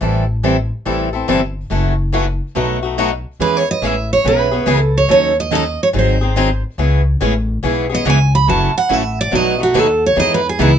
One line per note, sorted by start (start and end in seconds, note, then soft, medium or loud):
0.01 0.69 A1 medium
0.01 0.23 E3 medium
0.01 0.23 G3 medium
0.01 0.24 C4 medium
0.01 0.24 E4 medium
0.01 0.24 A4 medium
0.43 0.55 E3 medium
0.43 0.55 G3 medium
0.43 0.56 C4 medium
0.43 0.56 E4 medium
0.43 0.56 A4 medium
0.85 1.22 A1 medium
0.85 1.08 E3 medium
0.85 1.08 G3 medium
0.85 1.08 C4 medium
0.85 1.08 E4 medium
0.85 1.08 A4 medium
1.13 1.27 C4 soft
1.13 1.27 E4 soft
1.13 1.28 A4 medium
1.28 1.65 G1 medium
1.28 1.40 E3 medium
1.28 1.40 G3 medium
1.28 1.40 C4 medium
1.28 1.40 E4 medium
1.28 1.41 A4 medium
1.70 2.38 F#1 medium
1.70 1.92 C#3 medium
1.70 1.93 E3 medium
1.70 1.93 F#3 medium
1.70 1.93 A3 medium
1.70 1.93 C#4 medium
1.70 1.93 E4 medium
1.70 1.93 F#4 medium
1.70 1.93 A4 medium
2.12 2.25 C#3 medium
2.12 2.25 E3 medium
2.12 2.25 F#3 medium
2.12 2.25 A3 medium
2.12 2.25 C#4 medium
2.12 2.25 E4 medium
2.12 2.25 F#4 medium
2.12 2.25 A4 medium
2.55 3.23 B1 medium
2.55 2.77 B2 medium
2.55 2.78 F#3 medium
2.55 2.78 A3 medium
2.55 2.78 D#4 medium
2.55 2.78 F#4 medium
2.55 2.78 B4 medium
2.83 2.97 A3 soft
2.83 2.98 D#4 soft
2.83 2.97 F#4 medium
2.98 3.10 B2 medium
2.98 3.10 F#3 medium
2.98 3.10 A3 medium
2.98 3.10 D#4 medium
2.98 3.10 F#4 medium
2.98 3.10 B4 medium
3.40 3.74 E2 medium
3.40 3.62 E3 medium
3.40 3.62 G#3 medium
3.40 3.62 B3 medium
3.40 3.63 C#4 medium
3.40 3.63 G#4 medium
3.40 3.63 B4 medium
3.40 3.57 B4 medium
3.57 3.70 C#5 medium
3.71 3.85 D#5 medium
3.82 4.18 A1 medium
3.82 3.94 E3 medium
3.82 3.94 G#3 medium
3.82 3.94 B3 medium
3.82 3.95 C#4 medium
3.82 3.95 G#4 medium
3.82 3.95 B4 loud
3.82 4.12 E5 medium
4.13 4.25 C#5 medium
4.24 4.61 B1 medium
4.24 4.47 E3 medium
4.24 4.47 G#3 medium
4.24 4.47 B3 medium
4.24 4.47 C#4 medium
4.24 4.48 G#4 medium
4.24 4.48 B4 medium
4.24 4.82 B4 medium
4.51 4.65 B3 soft
4.51 4.66 C#4 medium
4.51 4.66 G#4 medium
4.66 5.03 C#2 medium
4.66 4.78 E3 medium
4.66 4.79 G#3 medium
4.66 4.79 B3 medium
4.66 4.79 C#4 medium
4.66 4.79 G#4 medium
4.66 4.79 B4 medium
4.82 4.98 A4 medium
4.98 5.10 C#5 medium
5.08 5.77 D#2 medium
5.08 5.31 D#3 medium
5.08 5.31 F#3 medium
5.08 5.31 C#4 medium
5.08 5.32 D#4 medium
5.08 5.32 A4 medium
5.08 5.36 C#5 medium
5.40 5.54 D#5 medium
5.51 5.63 D#3 medium
5.51 5.63 F#3 medium
5.51 5.64 C#4 medium
5.51 5.64 D#4 medium
5.51 5.64 A4 medium
5.55 5.82 D#5 medium
5.83 5.88 C#5 medium
5.93 6.62 G#1 medium
5.93 6.16 D#3 medium
5.93 6.16 F#3 medium
5.93 6.16 C4 medium
5.93 6.16 D#4 medium
5.93 6.16 G#4 medium
5.99 6.62 C5 medium
6.21 6.36 C4 soft
6.21 6.36 D#4 soft
6.21 6.36 G#4 medium
6.36 6.48 D#3 medium
6.36 6.48 F#3 medium
6.36 6.48 C4 medium
6.36 6.48 D#4 loud
6.36 6.49 G#4 medium
6.78 7.20 C#2 medium
6.78 7.00 C#3 medium
6.78 7.01 E3 medium
6.78 7.01 G#3 medium
6.78 7.01 B3 medium
6.78 7.01 C#4 medium
6.78 7.01 E4 medium
6.78 7.01 G#4 medium
7.21 7.62 A1 medium
7.21 7.32 C#3 medium
7.21 7.33 E3 medium
7.21 7.33 G#3 medium
7.21 7.33 B3 medium
7.21 7.33 C#4 medium
7.21 7.33 E4 medium
7.21 7.33 G#4 medium
7.63 8.04 B1 medium
7.63 7.85 C#3 medium
7.63 7.85 E3 medium
7.63 7.86 G#3 medium
7.63 7.85 B3 medium
7.63 7.85 C#4 medium
7.63 7.86 E4 medium
7.63 7.86 G#4 medium
7.89 8.05 B3 soft
7.89 8.05 C#4 medium
7.89 8.04 G#4 soft
7.95 8.07 D#5 loud
8.05 8.46 C#2 medium
8.05 8.17 C#3 medium
8.05 8.17 E3 loud
8.05 8.18 G#3 medium
8.05 8.18 B3 medium
8.05 8.18 C#4 medium
8.05 8.18 E4 medium
8.05 8.18 G#4 loud
8.10 8.34 G#5 medium
8.35 8.48 B5 loud
8.48 8.73 F#1 medium
8.48 8.70 C#3 medium
8.48 8.70 E3 medium
8.48 8.70 F#3 medium
8.48 8.70 A3 medium
8.48 8.70 C#4 medium
8.48 8.70 E4 medium
8.48 8.71 F#4 medium
8.48 8.71 A4 medium
8.48 8.75 A5 medium
8.78 8.93 F#5 medium
8.89 9.31 A1 medium
8.89 9.01 C#3 medium
8.89 9.01 E3 medium
8.89 9.02 F#3 medium
8.89 9.02 A3 medium
8.89 9.02 C#4 medium
8.89 9.02 E4 medium
8.89 9.02 F#4 medium
8.89 9.02 A4 loud
8.93 9.18 E5 medium
9.21 9.34 D5 medium
9.31 9.73 B1 medium
9.31 9.54 B2 medium
9.31 9.54 F#3 medium
9.31 9.54 A3 medium
9.31 9.54 D#4 medium
9.31 9.55 F#4 medium
9.31 9.55 B4 medium
9.35 9.60 D#5 medium
9.59 9.74 A3 soft
9.59 9.74 D#4 soft
9.59 9.73 F#4 soft
9.63 9.79 F#4 medium
9.74 10.15 D#2 medium
9.74 9.86 B2 medium
9.74 9.86 F#3 medium
9.74 9.86 A3 medium
9.74 9.86 D#4 medium
9.74 9.87 F#4 loud
9.74 9.86 B4 medium
9.79 10.03 A4 medium
10.06 10.19 C#5 medium
10.16 10.58 E2 medium
10.16 10.38 E3 medium
10.16 10.39 G#3 medium
10.16 10.39 B3 medium
10.16 10.39 D#4 medium
10.16 10.39 G#4 medium
10.16 10.32 D#5 medium
10.34 10.46 B4 medium
10.49 10.61 G#4 medium
10.59 10.79 C#2 medium
10.59 10.71 E3 medium
10.59 10.71 G#3 medium
10.59 10.71 B3 medium
10.59 10.71 D#4 medium
10.59 10.79 E4 medium
10.59 10.71 G#4 medium